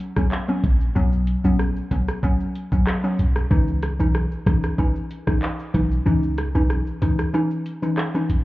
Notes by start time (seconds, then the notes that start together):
0.00 closed hi-hat, shaker
0.16 F#3 B3 C#4, kick, cross-stick, shaker
0.32 clap, shaker
0.48 F#3 B3 C#4, shaker
0.64 A#1, kick, closed hi-hat, shaker
0.81 shaker
0.95 B1 F#3 B3 C#4, shaker
1.12 shaker
1.27 closed hi-hat, shaker
1.44 A#1 F#3 B3 C#4, shaker
1.59 cross-stick, shaker
1.76 shaker
1.91 B1 F#3 B3 C#4, kick, closed hi-hat, shaker
2.08 cross-stick, shaker
2.23 F#3 B3 C#4, kick, shaker
2.40 shaker
2.55 closed hi-hat, shaker
2.72 F#3 B3 C#4, kick, shaker
2.87 cross-stick, clap, shaker
3.04 F#3 B3 C#4, shaker
3.19 B1, closed hi-hat, shaker
3.36 cross-stick, shaker
3.50 C#2 E3 C#4 D#4, kick, shaker
3.68 shaker
3.83 cross-stick, closed hi-hat, shaker
3.99 B1 E3 C#4 D#4, shaker
4.15 cross-stick, shaker
4.32 shaker
4.46 C#2 E3 C#4 D#4, kick, cross-stick, closed hi-hat, shaker
4.63 cross-stick, shaker
4.78 E3 C#4 D#4, kick, shaker
4.95 shaker
5.11 closed hi-hat, shaker
5.27 E3 C#4 D#4, kick, cross-stick, shaker
5.42 clap, shaker
5.59 shaker
5.74 B1 E3 C#4 D#4, kick, closed hi-hat, shaker
5.91 shaker
6.06 C#2 E3 C#4 D#4, shaker
6.23 shaker
6.38 cross-stick, closed hi-hat, shaker
6.55 B1 E3 C#4 D#4, shaker
6.70 cross-stick, shaker
6.87 shaker
7.02 C#2 E3 C#4 D#4, closed hi-hat, shaker
7.19 cross-stick, shaker
7.34 E3 C#4 D#4, shaker
7.51 shaker
7.66 closed hi-hat, shaker
7.82 E3 C#4 D#4, shaker
7.98 cross-stick, clap, shaker
8.14 E3 C#4 D#4, shaker
8.29 A#1, closed hi-hat, shaker